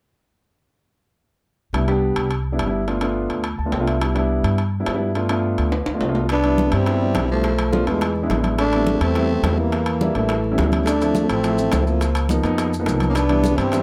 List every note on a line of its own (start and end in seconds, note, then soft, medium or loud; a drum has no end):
1.73 2.13 C2 medium
1.73 1.83 G3 medium
1.73 1.84 B3 medium
1.73 1.84 D4 medium
1.73 1.84 E4 medium
1.73 high timbale medium
1.88 2.28 G3 medium
1.88 2.28 B3 medium
1.88 2.28 D4 medium
1.88 2.28 G4 loud
1.88 high timbale medium
2.16 2.56 C2 medium
2.16 high timbale medium
2.31 high timbale medium
2.52 2.62 G3 medium
2.52 2.62 B3 medium
2.52 2.62 D4 medium
2.52 2.62 E4 medium
2.59 3.25 G1 medium
2.59 high timbale medium
2.66 2.81 G3 medium
2.66 2.81 B3 medium
2.66 2.81 D4 medium
2.66 2.81 E4 medium
2.87 2.97 A3 medium
2.87 2.98 B3 medium
2.87 2.98 D4 medium
2.87 2.98 F4 medium
2.87 high timbale medium
3.01 3.42 A3 medium
3.01 3.42 B3 medium
3.01 3.42 D4 medium
3.01 3.42 F4 loud
3.01 high timbale medium
3.30 3.57 D2 medium
3.30 high timbale medium
3.44 high timbale medium
3.58 3.72 D2 medium
3.58 3.72 A5 medium
3.65 3.76 A3 medium
3.65 3.76 B3 medium
3.65 3.76 D4 medium
3.65 3.76 F4 medium
3.72 4.39 C2 medium
3.72 3.86 G5 medium
3.72 high timbale medium
3.72 low timbale medium
3.80 3.95 A3 medium
3.80 3.95 B3 medium
3.80 3.95 D4 medium
3.80 3.95 F4 medium
3.87 4.00 E5 medium
3.87 high timbale medium
4.00 4.11 G3 medium
4.00 4.11 B3 medium
4.00 4.11 D4 medium
4.00 4.11 E4 medium
4.00 high timbale medium
4.15 4.55 G3 medium
4.15 4.56 B3 medium
4.15 4.55 D4 medium
4.15 4.56 E4 medium
4.15 high timbale medium
4.44 4.84 G2 medium
4.44 high timbale medium
4.58 high timbale medium
4.80 4.90 G3 medium
4.80 4.90 B3 medium
4.80 4.90 D4 medium
4.80 4.90 E4 medium
4.86 5.53 G2 medium
4.86 high timbale medium
4.86 low timbale medium
4.94 5.09 G3 medium
4.94 5.09 B3 medium
4.94 5.10 D4 medium
4.94 5.10 E4 loud
5.15 5.26 A3 medium
5.15 5.26 B3 medium
5.15 5.26 D4 medium
5.15 5.26 F4 medium
5.15 high timbale medium
5.29 5.70 A3 medium
5.29 5.70 B3 medium
5.29 5.70 D4 medium
5.29 5.70 F4 medium
5.29 high timbale medium
5.58 5.85 D2 medium
5.58 high timbale medium
5.72 high timbale medium
5.86 6.01 D2 medium
5.86 high timbale medium
5.94 6.04 A3 medium
5.94 6.04 B3 medium
5.94 6.04 D4 medium
5.94 6.04 F4 medium
6.01 6.68 C2 medium
6.01 low timbale medium
6.08 6.23 A3 medium
6.08 6.24 B3 medium
6.08 6.24 D4 medium
6.08 6.24 F4 medium
6.15 low timbale medium
6.29 6.76 B3 medium
6.29 6.77 D4 loud
6.29 high bongo medium
6.29 high conga soft
6.29 high timbale medium
6.44 6.59 G3 medium
6.44 6.59 B3 medium
6.44 6.59 D4 medium
6.44 6.60 E4 medium
6.44 high conga soft
6.44 high timbale medium
6.58 high bongo medium
6.58 high conga medium
6.65 6.80 G3 medium
6.65 6.81 B3 medium
6.65 6.81 D4 medium
6.65 6.81 E4 medium
6.72 7.13 G2 medium
6.72 7.31 G3 medium
6.72 7.31 C4 loud
6.72 high conga soft
6.72 high timbale medium
6.86 6.97 G3 medium
6.86 6.97 B3 medium
6.86 6.97 D4 medium
6.86 6.97 E4 medium
6.86 high bongo medium
6.86 high conga soft
6.86 high timbale medium
7.01 7.17 G3 medium
7.01 7.17 B3 medium
7.01 7.17 D4 medium
7.01 7.17 E4 medium
7.01 high conga soft
7.15 7.82 B1 medium
7.15 high bongo medium
7.15 low bongo medium
7.15 high conga medium
7.15 high timbale medium
7.23 7.44 G3 medium
7.23 7.44 B3 medium
7.23 7.44 D4 medium
7.23 7.45 E4 medium
7.30 7.84 F3 medium
7.30 7.85 A3 medium
7.30 high conga soft
7.44 high bongo medium
7.44 high conga soft
7.44 high timbale medium
7.58 high bongo soft
7.58 high conga soft
7.58 high timbale medium
7.72 7.83 A3 medium
7.72 7.83 B3 medium
7.72 7.83 D4 medium
7.72 7.83 F4 loud
7.72 high bongo medium
7.72 high conga medium
7.86 8.27 E2 medium
7.86 8.41 E3 medium
7.86 8.41 G#3 medium
7.86 8.01 A3 medium
7.86 8.01 B3 medium
7.86 8.01 D4 medium
7.86 8.02 F4 medium
7.86 high bongo soft
7.86 high conga soft
7.86 high timbale medium
8.01 high bongo medium
8.01 high conga soft
8.01 high timbale medium
8.16 high conga soft
8.23 8.33 G#3 medium
8.23 8.33 B3 medium
8.23 8.33 D4 medium
8.23 8.33 E4 medium
8.30 8.96 A1 medium
8.30 high bongo medium
8.30 low bongo medium
8.30 high conga medium
8.30 high timbale medium
8.37 8.59 G#3 medium
8.37 8.59 B3 medium
8.37 8.59 D4 medium
8.37 8.59 E4 medium
8.44 high bongo soft
8.44 high conga medium
8.44 high timbale medium
8.58 8.99 A3 medium
8.58 8.99 D4 loud
8.58 high bongo medium
8.58 high conga soft
8.58 high timbale medium
8.72 8.88 G3 medium
8.72 8.88 B3 medium
8.72 8.88 C4 medium
8.72 8.88 E4 medium
8.72 high conga soft
8.72 high timbale medium
8.87 high bongo medium
8.87 high conga medium
8.95 9.09 G3 medium
8.95 9.09 B3 medium
8.95 9.09 C4 medium
8.95 9.10 E4 medium
9.01 9.41 E2 medium
9.01 9.60 A3 medium
9.01 9.60 C4 medium
9.01 high conga soft
9.01 high timbale medium
9.15 9.26 G3 medium
9.15 9.26 B3 medium
9.15 9.26 C4 medium
9.15 9.26 E4 loud
9.15 high bongo medium
9.15 high conga soft
9.15 high timbale medium
9.30 9.45 G3 medium
9.30 9.46 B3 medium
9.30 9.46 C4 medium
9.30 9.46 E4 medium
9.30 high conga soft
9.43 10.10 E2 medium
9.43 high bongo medium
9.43 low bongo medium
9.43 high conga medium
9.43 high timbale medium
9.43 low timbale medium
9.52 9.73 G3 medium
9.52 9.73 B3 medium
9.52 9.73 C4 medium
9.52 9.73 E4 medium
9.58 10.16 E3 medium
9.58 10.18 A#3 medium
9.58 high conga soft
9.72 high bongo medium
9.72 high conga soft
9.72 high timbale medium
9.86 high bongo soft
9.86 high conga soft
9.86 high timbale medium
10.01 10.11 G3 medium
10.01 10.11 A#3 medium
10.01 10.12 D4 medium
10.01 10.12 E4 medium
10.01 high bongo medium
10.01 high conga medium
10.15 10.55 A1 medium
10.15 10.73 E3 medium
10.15 10.30 G3 medium
10.15 10.73 A3 medium
10.15 10.30 A#3 medium
10.15 10.30 D4 medium
10.15 10.30 E4 medium
10.15 high bongo soft
10.15 high conga soft
10.15 high timbale medium
10.29 high bongo medium
10.29 high conga soft
10.29 high timbale medium
10.44 high conga soft
10.51 10.61 G3 medium
10.51 10.61 B3 medium
10.51 10.61 C#4 medium
10.51 10.61 E4 medium
10.58 11.24 D2 medium
10.58 high bongo medium
10.58 low bongo medium
10.58 high conga medium
10.58 high timbale medium
10.58 low timbale medium
10.65 10.87 G3 medium
10.65 10.87 B3 medium
10.65 10.87 C#4 medium
10.65 10.87 E4 medium
10.72 high bongo soft
10.72 high conga medium
10.72 high timbale medium
10.85 11.30 A3 medium
10.85 11.32 D4 loud
10.85 high bongo medium
10.85 high conga soft
10.85 high timbale medium
10.85 maracas medium
11.01 11.16 F3 medium
11.01 11.16 A3 medium
11.01 11.16 C4 medium
11.01 11.16 E4 medium
11.01 high conga soft
11.01 high timbale medium
11.01 maracas medium
11.15 high bongo medium
11.15 high conga medium
11.15 maracas medium
11.22 11.37 F3 medium
11.22 11.37 A3 medium
11.22 11.37 C4 medium
11.22 11.38 E4 medium
11.29 11.70 A1 medium
11.29 11.86 A3 medium
11.29 11.87 C4 medium
11.29 high conga soft
11.29 high timbale medium
11.29 maracas soft
11.43 11.54 F3 medium
11.43 11.54 A3 medium
11.43 11.54 C4 medium
11.43 11.54 E4 medium
11.43 high bongo medium
11.43 high conga soft
11.43 high timbale medium
11.43 maracas medium
11.58 11.73 F3 medium
11.58 11.73 A3 medium
11.58 11.73 C4 medium
11.58 11.73 E4 medium
11.58 high conga soft
11.58 maracas medium
11.72 12.39 C#2 medium
11.72 high bongo medium
11.72 low bongo medium
11.72 high conga medium
11.72 high timbale medium
11.72 low timbale medium
11.72 maracas medium
11.79 12.01 F3 medium
11.79 12.01 A3 medium
11.79 12.01 C4 medium
11.79 12.01 E4 medium
11.86 12.40 F3 medium
11.86 12.40 A#3 medium
11.86 high conga soft
11.86 maracas soft
12.01 high bongo medium
12.01 high conga soft
12.01 high timbale medium
12.01 maracas medium
12.15 high bongo soft
12.15 high conga soft
12.15 high timbale medium
12.15 maracas medium
12.29 12.39 F3 medium
12.29 12.40 A#3 medium
12.29 12.40 B3 medium
12.29 12.40 D#4 medium
12.29 high bongo medium
12.29 high conga medium
12.29 maracas medium
12.43 12.84 F2 medium
12.43 12.69 F3 medium
12.43 12.69 A#3 medium
12.43 12.69 B3 medium
12.43 12.69 D#4 loud
12.43 high bongo soft
12.43 high conga soft
12.43 high timbale medium
12.43 maracas soft
12.58 high bongo medium
12.58 high conga soft
12.58 high timbale medium
12.58 maracas medium
12.72 high conga soft
12.72 maracas medium
12.79 12.89 F3 medium
12.79 12.90 A#3 medium
12.79 12.90 B3 medium
12.79 12.90 D#4 medium
12.86 13.53 C2 medium
12.86 high bongo medium
12.86 low bongo medium
12.86 high conga medium
12.86 high timbale medium
12.86 maracas medium
12.93 13.15 F3 medium
12.93 13.15 A#3 medium
12.93 13.15 B3 medium
12.93 13.15 D#4 medium
13.00 high bongo soft
13.00 high conga medium
13.00 high timbale medium
13.00 maracas soft
13.08 13.17 A#3 medium
13.08 13.16 C#4 medium
13.14 13.58 B3 loud
13.14 13.60 D4 loud
13.14 high bongo medium
13.14 high conga soft
13.14 high timbale medium
13.14 maracas medium
13.29 13.44 E3 medium
13.29 13.45 G3 medium
13.29 13.45 B3 medium
13.29 13.45 D4 medium
13.29 high conga soft
13.29 high timbale medium
13.44 high bongo medium
13.44 high conga medium
13.44 maracas medium
13.51 13.66 E3 medium
13.51 13.66 G3 medium
13.51 13.66 B3 medium
13.51 13.66 D4 medium
13.57 13.82 G2 medium
13.57 13.82 G3 medium
13.57 13.82 C4 loud
13.57 high conga soft
13.57 high timbale medium
13.57 maracas soft
13.72 13.82 E3 medium
13.72 13.82 G3 medium
13.72 13.82 B3 medium
13.72 13.82 D4 medium
13.72 high bongo medium
13.72 high conga soft
13.72 high timbale medium
13.72 maracas medium